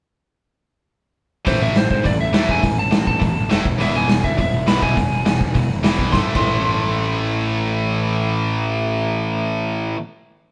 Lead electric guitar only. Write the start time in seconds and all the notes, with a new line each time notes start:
1.47 C5
1.62 E5
1.77 C5
1.91 C5
2.06 D5
2.21 E5
2.51 G#5
2.79 A5
3.07 A5
3.82 E5
3.96 G#5
4.25 E5
4.41 E5
4.68 B5
4.82 G#5
6.12 C6
6.36 C6